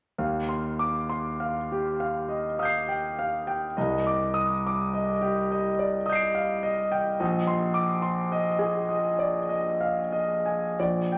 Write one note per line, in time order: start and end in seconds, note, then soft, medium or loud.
0.18 3.72 D#2 soft
0.18 0.67 F5 soft
0.49 0.98 C6 soft
0.79 1.10 D6 soft
1.09 1.58 C6 soft
1.40 1.87 F5 soft
1.72 2.18 G4 soft
2.00 2.46 F5 soft
2.29 2.58 D#5 soft
2.59 3.06 F5 soft
2.59 3.73 D#6 soft
2.59 3.74 G6 soft
2.65 3.76 C7 soft
2.88 3.17 G5 soft
3.19 3.65 F5 soft
3.47 3.76 G5 soft
3.77 7.18 C2 soft
3.77 4.24 D#5 soft
4.07 4.53 D6 soft
4.34 4.64 D#6 soft
4.67 5.12 D6 soft
4.94 5.40 D#5 soft
5.21 5.68 G4 soft
5.51 5.97 D#5 soft
5.79 6.08 D5 soft
6.06 6.52 D#5 soft
6.06 7.16 D#6 soft
6.06 7.17 G6 soft
6.13 7.19 C7 soft
6.13 7.20 D7 soft
6.35 6.64 F5 soft
6.63 7.09 D#5 soft
6.92 7.20 G5 soft
7.20 10.73 A#1 soft
7.20 7.65 D#5 soft
7.47 7.92 C6 soft
7.74 8.03 D6 soft
8.02 8.48 C6 soft
8.32 8.78 D#5 soft
8.59 9.07 G#4 soft
8.89 9.37 D#5 soft
9.19 9.49 D5 soft
9.49 9.99 D#5 soft
9.81 10.12 F5 soft
10.12 10.64 D#5 soft
10.46 10.78 G#5 soft
10.80 11.18 A#1 soft
10.80 11.18 D5 soft
11.12 11.18 G5 soft